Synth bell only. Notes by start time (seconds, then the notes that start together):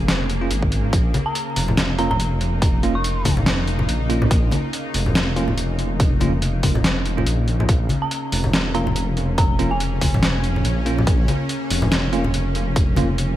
1.26 A#5
1.99 A#5
2.11 A#5
2.95 C#6
8.02 A#5
8.75 A#5
9.38 A#5
9.71 G#5